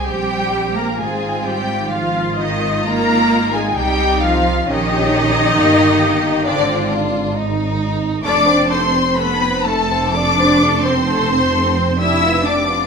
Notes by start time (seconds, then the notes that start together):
Already playing: C4 G4
0.07 A#1 G3 G4 G5
0.76 A#3 A#4 A#5
0.99 G#1 G#3 C4 F4 G#4 G#5
1.44 G3 G4 G5
1.90 F3 F4 F5
2.36 D#3 D#4 D#5
2.84 A#3 D#4 A#4 A#5
3.52 G#3 G#4 G#5
3.74 C2 G3 D#4 G5
3.78 G4
4.21 F3 F4 F5
4.65 A#1 D#3 C#4 D#4 G4 D#5
5.56 G1 A#3 G4
6.45 G#1 D3 C4 D4 F4 D5
6.90 D4
7.36 D#4
8.23 F1 A3 D4 A4 D5 D6
8.47 C4 C5
8.70 A3 C4 A4 C5 C6
8.94 C4 C5
9.16 A3 B3 A4 B4 B5
9.40 C4 C5
9.64 A3 A4 A5
9.90 C4 C5
10.14 A3 D4 A4 D5 D6
10.39 C4 C5
10.61 A3 A4
10.84 C4 C5 C6
11.07 A3 A4
11.29 C4 C5
11.52 A3 A4
11.76 C4 C5
11.98 D4 E4 G4 E5 E6
12.22 B3 F4
12.44 D4 G4 D5 D6
12.68 B3 F4